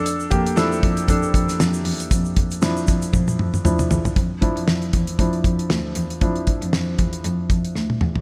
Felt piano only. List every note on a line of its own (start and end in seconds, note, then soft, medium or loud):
0.00 0.28 D4 medium
0.00 0.33 A4 medium
0.30 0.56 A#3 medium
0.30 0.57 G4 medium
0.56 2.58 F3 medium
0.56 1.05 D4 medium
0.56 2.58 E4 medium
0.56 1.04 A4 medium
1.08 2.61 D4 medium
1.08 3.61 A4 medium
2.62 3.35 F3 medium
2.62 3.35 D4 medium
2.62 3.36 E4 medium
3.64 3.88 F3 soft
3.64 3.88 D4 soft
3.64 3.88 E4 medium
4.41 5.17 F3 soft
4.41 5.18 D4 soft
4.41 5.18 E4 medium
5.19 5.42 F3 soft
5.19 5.42 D4 soft
5.19 5.42 E4 soft
6.21 8.21 F3 soft
6.21 8.21 D4 soft
6.21 8.21 E4 soft